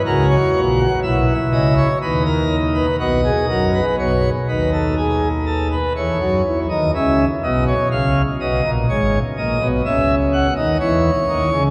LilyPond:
<<
  \new Staff \with { instrumentName = "Pipe organ" } { \time 4/4 \key b \major \tempo 4 = 61 << { ais'16 cis''8 fis''16 e''8 dis''16 cis''16 b'16 ais'8 b'16 dis''4 | cis''8 b'16 a'16 gis'8 a'16 b'16 cis''8. dis''16 e''8 dis''16 cis''16 | eis''8 dis''8 cis''8 dis''8 e''8 fis''16 dis''16 cis''4 | } \\ { fis'4 e'4 dis'4 fis'16 gis'16 ais'16 b'16 | r1 | r1 | } >> }
  \new Staff \with { instrumentName = "Pipe organ" } { \clef bass \time 4/4 \key b \major <cis, cis>8 <ais,, ais,>8 <b,, b,>8 <cis, cis>8 <dis, dis>4 <b,, b,>8 <fis, fis>8 | <b,, b,>8 <dis, dis>4. <e, e>16 <fis, fis>16 <e, e>16 <dis, dis>16 <cis, cis>8 <b,, b,>8 | <cis, cis>8 <b,, b,>16 <ais,, ais,>16 <gis,, gis,>8 <ais,, ais,>16 <b,, b,>16 <cis, cis>8. <dis, dis>16 <e, e>8 <dis, dis>16 <cis, cis>16 | }
>>